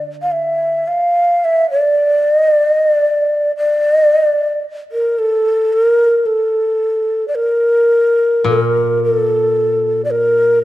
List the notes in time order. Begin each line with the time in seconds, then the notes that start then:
Already playing: D3
0.22 F5
0.32 E5
0.88 F5
1.45 E5
1.71 D5
2.35 D#5
2.53 D5
2.71 D#5
2.89 D5
3.57 D5
4.92 A#4
5.19 A4
5.73 A#4
6.26 A4
7.28 D5
7.35 A#4
8.44 A#2 A4
8.61 A#4
9.04 A4
10.05 D5
10.11 A#4